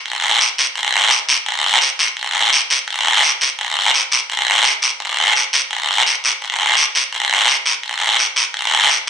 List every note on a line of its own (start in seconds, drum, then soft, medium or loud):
0.06 long guiro medium
0.40 short guiro medium
0.58 short guiro medium
0.75 long guiro medium
1.11 short guiro medium
1.29 short guiro medium
1.46 long guiro medium
1.81 short guiro medium
1.99 short guiro medium
2.17 long guiro medium
2.53 short guiro medium
2.70 short guiro medium
2.88 long guiro medium
3.23 short guiro medium
3.41 short guiro medium
3.59 long guiro medium
3.94 short guiro medium
4.12 short guiro medium
4.30 long guiro medium
4.64 short guiro medium
4.82 short guiro medium
5.00 long guiro medium
5.36 short guiro medium
5.53 short guiro medium
5.71 long guiro medium
6.06 short guiro medium
6.24 short guiro medium
6.42 long guiro medium
6.77 short guiro medium
6.95 short guiro medium
7.12 long guiro medium
7.48 short guiro medium
7.66 short guiro medium
7.83 long guiro medium
8.18 short guiro medium
8.36 short guiro medium
8.54 long guiro medium
8.89 short guiro medium